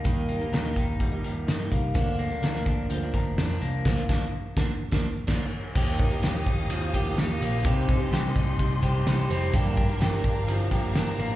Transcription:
<<
  \new Staff \with { instrumentName = "String section" } { \time 4/4 \key ees \lydian \tempo 4 = 127 << { r1 | r1 | r1 | <f'' ees'''>1 |
<ees'' c'''>1 | <f'' bes''>1 | } \\ { r1 | r1 | r1 | g'1~ |
g'1~ | g'1 | } >> }
  \new Staff \with { instrumentName = "Clean electric guitar" } { \time 4/4 \key ees \lydian <ees g bes ees' bes'>8 bes8 bes'8 ees'8 g8 bes'8 ees'8 bes8 | d8 bes8 bes'8 d'8 f8 bes'8 d'8 bes8 | r1 | <ees g'>8 ees'8 g'8 ees'8 f8 g'8 ees'8 bes8 |
<c g'>8 ees'8 g'8 ees'8 g8 g'8 ees'8 c'8 | <g, g'>8 d'8 g'8 d'8 f8 g'8 d'8 bes8 | }
  \new Staff \with { instrumentName = "Twelve-string acoustic guitar" } { \time 4/4 \key ees \lydian <ees g bes ees'>8. <g bes ees'>8 <ees g bes ees'>4 <g bes ees'>4 <g bes ees'>8. | <d f bes d'>8. <f bes d'>8 <d f bes d'>4 <f bes d'>4 <f bes d'>8. | <d f bes d'>8 <f bes d'>8 r8 <d f bes d'>8 r16 <f bes d'>8 r16 <f bes d'>8 r8 | <ees f bes ees' g'>8. <bes ees' g'>16 <f bes ees' g'>4. <f bes ees' g'>8 <f bes ees' g'>8 <f bes ees' g'>8 |
<c g c' ees' g'>8. <c' ees' g'>16 <g c' ees' g'>4. <g c' ees' g'>8 <g c' ees' g'>8 <g c' ees' g'>8 | <g, d f bes d' bes'>8. <f bes d' bes'>16 <f bes d' bes'>4. <f bes d' bes'>8 <f bes d' bes'>8 <f bes d' bes'>8 | }
  \new Staff \with { instrumentName = "Picked electric bass" } { \clef bass \time 4/4 \key ees \lydian ees,4 ees,8 ees,8 ees,8 ees,8 g,8 c,8 | d,4 d,8 d,8 d,8 d,8 f,8 c,8 | d,8 d,8 r8 d,8 r16 d,8 r16 d,8 r8 | ees,4 ees,8 ees,8 ees,8 ees,8 ees,8 bes,,8 |
c,4 c,8 c,8 c,8 c,8 c,8 f,,8 | g,,4 g,,8 g,,8 g,,8 g,,8 g,,8 a,,8 | }
  \new DrumStaff \with { instrumentName = "Drums" } \drummode { \time 4/4 <hh bd>8 hh8 <hh sn>8 <hh bd>8 <hh bd>8 hh8 <hh sn>8 <hh bd>8 | <hh bd>8 hh8 <hh sn>8 <hh bd>8 hh8 <hh bd>8 <hh sn>8 hh8 | <cymc bd sn>8 <bd sn>8 r8 <bd sn>8 r16 <bd sn>8. <cymc bd sn>4 | <cymc bd>8 <bd cymr>8 <cymr sn>8 <bd cymr>8 cymr8 <bd cymr>8 <cymr sn>8 <hho cymr>8 |
<hhp bd cymr>8 <bd cymr>8 <cymr sn>8 <bd cymr>8 <bd cymr>8 <bd cymr>8 <cymr sn>8 <hho cymr>8 | <hhp bd cymr>8 <bd cymr>8 <cymr sn>8 <bd cymr>8 cymr8 <bd cymr>8 <cymr sn>8 <hho cymr>8 | }
>>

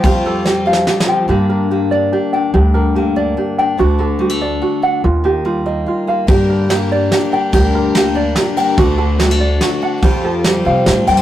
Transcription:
<<
  \new Staff \with { instrumentName = "Ukulele" } { \time 3/4 \key g \minor \tempo 4 = 144 <g' f'' g''>8 a'8 g'8 f''8 g'8 g''8 | g'8 bes'8 g'8 d''8 g'8 g''8 | g'8 bes'8 g'8 d''8 g'8 g''8 | fis'8 a'8 fis'8 d''8 fis'8 fis''8 |
f'8 g'8 f'8 ees''8 f'8 f''8 | g'8 bes'8 g'8 d''8 g'8 g''8 | g'8 bes'8 g'8 d''8 g'8 g''8 | fis'8 a'8 fis'8 d''8 fis'8 fis''8 |
g'8 a'8 g'8 f''8 g'8 g''8 | }
  \new Staff \with { instrumentName = "Twelve-string acoustic guitar" } { \time 3/4 \key g \minor <f a c' f' g'>4 <a c' f' g'>8 <c' f' g'>8 <a c' f' g'>8 <c' f' g'>8 | r2. | r2. | r2. |
r2. | <g, d g bes g' bes'>4 <g bes g' bes'>4 <g bes g' bes'>8 <g bes g' bes'>8 | <g, d g bes g' bes'>4 <g bes g' bes'>4 <g bes g' bes'>8 <g bes g' bes'>8 | <d a d' fis' a'>4 <a d' fis' a'>4 <a d' fis' a'>4 |
<f a c' f' g'>4 <a c' f' g'>8 <c' f' g'>8 <a c' f' g'>4 | }
  \new Staff \with { instrumentName = "Steel-string acoustic guitar" } { \time 3/4 \key g \minor << { g8 g8 c'4 g4 | <d bes d'>4 bes8 d'8 d'8 d'8 | r4 bes8 d'8 d'8 d'8 | <d a d' fis'>4 g16 a16 d'8 fis'8 d'8 |
r4 g8 bes8 f'8 bes8~ | bes4 bes8 d'8 d'8 d'8 | r4 bes8 d'8 d'8 d'8 | <d a d' fis'>4 g16 a16 d'8 fis'8 d'8 |
r4 g8 c'8 d'8 bes16 c'16 | } \\ { f,4. f4 f8 | g,8 d2~ d8 | g,8 d2~ d8 | d,8 d2~ d8 |
ees,8 ees2~ ees8 | g,8 d2~ d8 | g,8 d2~ d8 | d,8 d2~ d8 |
f,8 f2~ f8 | } >> }
  \new Staff \with { instrumentName = "Upright bass" } { \clef bass \time 3/4 \key g \minor f,2 r4 | g,2 r4 | d,2 r4 | d,2 r4 |
ees,2 r4 | g,2 r4 | d,2 r4 | d,2 r4 |
f,4. c8 a,8 g,8 | }
  \new DrumStaff \with { instrumentName = "Drums" } \drummode { \time 3/4 <bd cymr>4 \tuplet 3/2 { sn8 r8 sn8 sn8 sn8 r8 } | r4 r4 r4 | r4 r4 r4 | r4 r4 r4 |
r4 r4 r4 | <bd cymr>4 <cymr sn>4 <cymr sn>4 | <bd cymr>4 <cymr sn>4 <cymr sn>8 cymr8 | <bd cymr>4 <cymr sn>4 <cymr sn>4 |
<bd cymr>4 <cymr sn>4 <cymr sn>8 cymr8 | }
>>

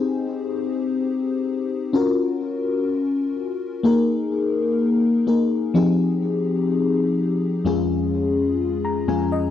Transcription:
\new Staff \with { instrumentName = "FM electric piano" } { \time 4/4 \key aes \major \tempo 4 = 126 << { r1 | r1 | r1 | r1 |
r2 r8 bes''8 aes''8 ees''8 | } \\ { <c' ees' g' aes'>2.~ <c' ees' g' aes'>8 r8 | <des' f' ges' bes'>1 | <bes ees' aes' bes'>2. <bes ees' aes' bes'>4 | <f c' ees' g' aes'>1 |
<f, aes des' f' aes'>2. <f, aes des' f' aes'>4 | } >> }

